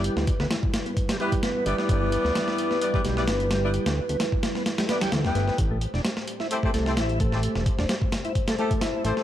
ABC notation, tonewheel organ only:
X:1
M:4/4
L:1/16
Q:"Swing 16ths" 1/4=130
K:Gmix
V:1 name="Tonewheel organ"
G, G, z B, E, z2 B, z G, G,2 B,2 G,2- | G, G, z B, E, z2 B, z G, G,2 B,2 G,2- | G, G, z B, E, z2 B, z G, B, G E, z B, B, | z A, z D G, z2 E z A, A,2 E2 A,2- |
A, A, z D G, z2 E z A, A,2 E2 A,2 |]